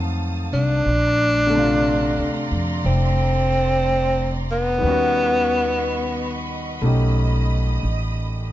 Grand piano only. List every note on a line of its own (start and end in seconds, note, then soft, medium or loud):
0.00 0.85 D#3 soft
0.00 0.85 F#3 soft
0.00 0.86 A3 soft
0.00 0.87 C4 soft
0.00 0.87 F4 medium
1.47 4.80 D3 medium
1.47 4.82 A3 soft
1.53 4.84 C3 soft
1.53 4.83 D4 soft
1.58 4.86 F4 medium
4.78 8.52 D#3 soft
4.78 8.52 G3 soft
4.83 8.52 B3 soft
4.83 6.81 C#4 soft
4.89 8.52 F#4 medium
6.82 8.52 A3 soft
6.82 8.52 C#4 soft
6.82 8.52 D#4 soft
6.82 8.52 G4 soft